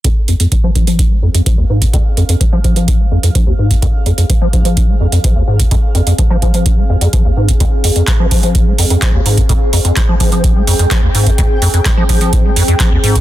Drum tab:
HH |x-xxx-xxx--xx--x|x-xxx-xxx--xx--x|x-xxx-xxx--xx--x|x-xxx-xxx--xx--x|
CP |----------------|----------------|----------------|----------------|
BD |o---o-o-o---o--o|o---o-o-o---o--o|o---o-o-o---o--o|o---o-o-o---o--o|

HH |x-oxx-oxx-oxx-ox|x-oxx-oxx-oxx-ox|x-oxx-oxx-oxx-ox|
CP |----x-------x---|----x-------x---|----x-------x---|
BD |o---o-o-o---o--o|o---o-o-o---o--o|o---o-o-o---o--o|